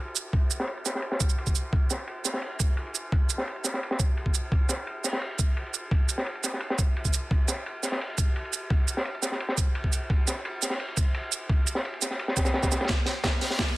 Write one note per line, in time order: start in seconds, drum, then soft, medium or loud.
0.08 ride soft
0.16 ride medium
0.16 cabasa medium
0.33 kick loud
0.33 ride medium
0.50 ride medium
0.50 cabasa medium
0.60 snare medium
0.67 ride medium
0.77 ride soft
0.85 snare soft
0.85 ride medium
0.85 cabasa medium
0.95 snare soft
1.02 ride medium
1.12 snare soft
1.20 kick medium
1.20 ride medium
1.20 cabasa medium
1.29 cabasa soft
1.38 ride medium
1.47 kick medium
1.47 cabasa soft
1.55 cabasa medium
1.73 kick loud
1.73 ride medium
1.90 snare soft
1.90 ride medium
1.90 cabasa medium
2.07 ride medium
2.24 snare soft
2.24 open hi-hat medium
2.24 cabasa medium
2.34 snare soft
2.42 ride medium
2.52 ride soft
2.59 kick medium
2.59 ride medium
2.59 cabasa medium
2.77 ride medium
2.86 ride soft
2.94 ride medium
2.94 cabasa medium
3.12 kick loud
3.12 ride medium
3.30 ride medium
3.30 cabasa soft
3.38 snare soft
3.47 ride medium
3.56 ride soft
3.64 snare soft
3.64 ride medium
3.64 cabasa medium
3.74 snare soft
3.83 ride medium
3.91 snare medium
4.00 kick loud
4.00 ride medium
4.00 cabasa medium
4.17 ride medium
4.26 kick medium
4.34 ride medium
4.34 cabasa medium
4.52 kick loud
4.52 ride medium
4.69 snare soft
4.69 ride medium
4.69 cabasa soft
4.87 ride medium
5.04 snare soft
5.04 open hi-hat medium
5.04 cabasa medium
5.13 snare soft
5.21 ride medium
5.31 ride soft
5.39 kick loud
5.39 ride medium
5.39 cabasa soft
5.57 ride medium
5.66 ride soft
5.74 ride medium
5.74 cabasa medium
5.91 kick loud
5.91 ride medium
6.09 ride medium
6.09 cabasa soft
6.18 snare soft
6.26 ride medium
6.35 ride soft
6.44 snare soft
6.44 ride medium
6.44 cabasa medium
6.54 snare soft
6.60 ride medium
6.70 snare medium
6.78 kick loud
6.78 ride medium
6.78 cabasa medium
6.96 ride medium
7.05 kick medium
7.05 cabasa soft
7.13 ride medium
7.13 cabasa medium
7.31 kick loud
7.31 ride medium
7.48 snare soft
7.48 ride medium
7.48 cabasa medium
7.66 ride medium
7.83 snare soft
7.83 open hi-hat medium
7.83 cabasa medium
7.92 snare soft
8.01 ride medium
8.10 ride soft
8.18 kick loud
8.18 ride medium
8.18 cabasa medium
8.36 ride medium
8.45 ride soft
8.53 ride medium
8.53 cabasa medium
8.70 kick loud
8.70 ride medium
8.87 ride medium
8.87 cabasa medium
8.97 snare medium
9.05 ride medium
9.15 ride soft
9.22 snare soft
9.22 ride medium
9.22 cabasa medium
9.32 snare soft
9.40 ride medium
9.49 snare soft
9.58 kick medium
9.58 ride medium
9.58 cabasa medium
9.75 ride medium
9.84 kick medium
9.93 ride medium
9.93 cabasa medium
10.10 kick loud
10.10 ride medium
10.27 snare soft
10.27 ride medium
10.27 cabasa medium
10.45 ride medium
10.62 snare soft
10.62 open hi-hat medium
10.62 cabasa medium
10.70 snare soft
10.80 ride medium
10.88 ride soft
10.96 kick medium
10.96 ride medium
10.96 cabasa medium
11.14 ride medium
11.23 ride soft
11.32 ride medium
11.32 cabasa medium
11.49 kick loud
11.49 ride medium
11.67 ride medium
11.67 cabasa medium
11.75 snare medium
11.85 ride medium
11.94 ride soft
12.02 snare soft
12.02 ride medium
12.02 cabasa medium
12.11 snare soft
12.19 ride medium
12.28 snare medium
12.36 kick medium
12.36 snare medium
12.36 ride medium
12.36 cabasa medium
12.45 snare loud
12.45 ride medium
12.45 cabasa soft
12.54 snare loud
12.54 ride medium
12.63 kick medium
12.63 snare loud
12.63 ride medium
12.63 cabasa soft
12.72 snare loud
12.72 ride medium
12.72 cabasa medium
12.81 snare medium
12.81 ride medium
12.84 snare medium
12.84 ride medium
12.89 kick medium
12.89 snare soft
12.89 closed hi-hat medium
12.89 ride medium
13.06 snare soft
13.06 closed hi-hat medium
13.06 ride medium
13.24 kick medium
13.24 snare medium
13.24 snare soft
13.24 closed hi-hat medium
13.24 ride medium
13.41 snare soft
13.41 closed hi-hat medium
13.41 open hi-hat medium
13.50 snare medium
13.59 kick medium
13.59 snare medium
13.59 closed hi-hat medium
13.59 ride medium
13.68 ride soft